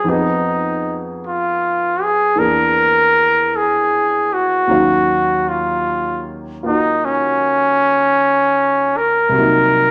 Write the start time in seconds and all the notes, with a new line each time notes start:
Already playing: G#4
0.04 F2 F3 B3
0.08 D#4 G#4
1.27 F4
2.03 G#4
2.35 E2 E3 A#3 D4 A#4
2.40 G#4
3.56 G#4
4.34 F#4
4.67 D#2 D#3 F#3 C#4
4.72 F5
5.49 F4
6.63 A#3 D#4 F4 F#4
7.05 C#4
8.98 A#4
9.29 C2 C3
9.33 F#3 A#3
9.40 D#4